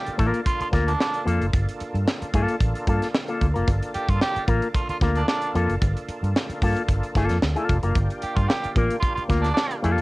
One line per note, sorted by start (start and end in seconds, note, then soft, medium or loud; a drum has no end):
0.00 10.02 A#3 medium
0.00 10.02 D4 medium
0.00 10.02 F4 medium
0.00 0.14 G4 medium
0.00 7.92 A4 medium
0.06 muted fingered electric bass stroke soft
0.06 closed hi-hat medium
0.18 0.30 A1 medium
0.18 0.39 A#3 loud
0.18 0.40 F4 medium
0.18 0.40 A#4 medium
0.18 kick medium
0.18 closed hi-hat medium
0.34 closed hi-hat medium
0.46 0.58 F4 loud
0.46 kick medium
0.46 closed hi-hat loud
0.61 0.69 F4 medium
0.61 muted fingered electric bass stroke soft
0.61 closed hi-hat medium
0.72 0.94 D2 medium
0.72 0.91 A#3 medium
0.72 0.92 F4 medium
0.72 0.92 A#4 medium
0.72 kick medium
0.72 snare soft
0.72 closed hi-hat medium
0.88 0.98 D4 loud
0.88 closed hi-hat medium
1.00 1.22 D4 loud
1.00 snare medium
1.14 closed hi-hat soft
1.25 1.38 F2 medium
1.25 1.45 A#3 medium
1.25 1.45 F4 medium
1.25 1.45 A4 medium
1.25 closed hi-hat medium
1.41 1.51 F#1 medium
1.41 closed hi-hat soft
1.53 1.65 G1 loud
1.53 kick loud
1.53 closed hi-hat medium
1.69 closed hi-hat medium
1.80 muted fingered electric bass stroke soft
1.80 closed hi-hat medium
1.94 2.04 G2 medium
1.94 closed hi-hat soft
2.08 snare loud
2.22 muted fingered electric bass stroke soft
2.22 closed hi-hat medium
2.34 2.45 G2 medium
2.34 2.54 A#3 medium
2.34 2.55 F4 medium
2.34 2.55 A4 loud
2.34 kick medium
2.34 closed hi-hat medium
2.48 closed hi-hat medium
2.60 2.72 A1 medium
2.60 kick medium
2.60 closed hi-hat medium
2.75 closed hi-hat soft
2.87 2.99 G2 loud
2.87 3.06 A#3 medium
2.87 3.07 F4 medium
2.87 3.07 A4 medium
2.87 kick medium
2.87 closed hi-hat medium
3.02 snare soft
3.02 closed hi-hat medium
3.15 snare loud
3.28 3.47 A#3 medium
3.28 3.46 F4 medium
3.28 3.46 A4 medium
3.28 closed hi-hat soft
3.41 3.53 D2 loud
3.41 kick medium
3.41 closed hi-hat medium
3.54 3.66 F#1 medium
3.54 3.69 A#3 medium
3.54 3.69 F4 medium
3.54 3.68 A#4 medium
3.54 closed hi-hat soft
3.68 3.79 G1 loud
3.68 kick loud
3.68 closed hi-hat medium
3.83 closed hi-hat medium
3.94 4.11 G4 medium
3.94 muted fingered electric bass stroke medium
3.94 closed hi-hat medium
4.09 4.19 G2 medium
4.09 4.19 F4 medium
4.09 kick medium
4.09 closed hi-hat soft
4.21 4.43 G4 loud
4.21 snare loud
4.36 muted fingered electric bass stroke medium
4.36 closed hi-hat medium
4.47 4.59 A1 medium
4.47 4.66 A#3 medium
4.47 4.67 F4 medium
4.47 4.67 A#4 medium
4.47 kick medium
4.47 closed hi-hat medium
4.62 closed hi-hat medium
4.74 4.86 F4 medium
4.74 kick medium
4.74 closed hi-hat medium
4.89 4.97 F4 medium
4.89 muted fingered electric bass stroke soft
4.89 closed hi-hat medium
5.01 5.22 D2 medium
5.01 5.20 A#3 medium
5.01 5.20 F4 medium
5.01 5.21 A#4 medium
5.01 kick medium
5.01 snare soft
5.01 closed hi-hat medium
5.15 5.26 D4 loud
5.15 closed hi-hat medium
5.28 5.50 D4 loud
5.28 snare medium
5.42 closed hi-hat soft
5.55 5.66 F2 medium
5.55 5.74 A#3 medium
5.55 5.74 F4 medium
5.55 5.74 A4 medium
5.55 closed hi-hat medium
5.68 5.79 F#1 medium
5.68 closed hi-hat soft
5.82 5.93 G1 loud
5.82 kick loud
5.82 closed hi-hat medium
5.97 closed hi-hat medium
6.09 muted fingered electric bass stroke soft
6.09 closed hi-hat medium
6.23 6.33 G2 loud
6.23 closed hi-hat soft
6.36 snare loud
6.49 muted fingered electric bass stroke soft
6.49 closed hi-hat medium
6.62 6.73 G2 medium
6.62 6.81 A#3 medium
6.62 6.81 F4 medium
6.62 6.82 A4 medium
6.62 kick medium
6.62 open hi-hat medium
6.77 closed hi-hat medium
6.88 7.00 G1 medium
6.88 kick medium
6.88 closed hi-hat medium
7.03 closed hi-hat soft
7.15 7.26 G1 medium
7.15 7.36 A#3 medium
7.15 7.36 F4 medium
7.15 7.37 A4 medium
7.15 kick medium
7.15 snare soft
7.15 closed hi-hat medium
7.29 7.40 F2 medium
7.29 snare soft
7.29 closed hi-hat medium
7.42 7.54 D2 medium
7.42 snare loud
7.56 7.77 A#3 medium
7.56 7.76 F4 medium
7.56 7.76 A4 medium
7.56 closed hi-hat soft
7.69 7.80 F1 medium
7.69 kick medium
7.69 closed hi-hat medium
7.83 7.93 F#1 medium
7.83 7.97 A#3 medium
7.83 7.97 F4 medium
7.83 7.97 A#4 medium
7.83 closed hi-hat soft
7.95 8.07 G1 loud
7.95 10.02 G4 medium
7.95 kick loud
7.95 closed hi-hat medium
8.10 closed hi-hat medium
8.22 8.37 G4 medium
8.22 muted fingered electric bass stroke soft
8.22 closed hi-hat medium
8.36 8.47 G2 loud
8.36 8.50 F4 medium
8.36 kick medium
8.36 closed hi-hat soft
8.48 8.70 G4 loud
8.48 snare loud
8.64 muted fingered electric bass stroke medium
8.64 closed hi-hat medium
8.76 8.87 A1 medium
8.76 8.95 A#3 medium
8.76 8.95 F4 medium
8.76 8.96 A#4 medium
8.76 kick loud
8.76 closed hi-hat medium
8.90 closed hi-hat medium
9.00 9.13 F4 loud
9.00 kick loud
9.00 closed hi-hat medium
9.15 9.23 F4 medium
9.15 muted fingered electric bass stroke soft
9.15 closed hi-hat soft
9.29 9.51 D2 loud
9.29 9.48 A#3 medium
9.29 9.48 F4 medium
9.29 9.49 A#4 medium
9.29 kick medium
9.29 snare soft
9.29 closed hi-hat medium
9.42 9.53 D4 loud
9.42 snare soft
9.42 closed hi-hat medium
9.54 9.76 D4 loud
9.54 snare loud
9.71 closed hi-hat soft
9.82 9.95 F2 medium
9.82 10.02 A#3 medium
9.82 10.02 F4 loud
9.82 10.02 A4 medium
9.82 closed hi-hat medium
9.98 10.02 F#1 medium
9.98 closed hi-hat soft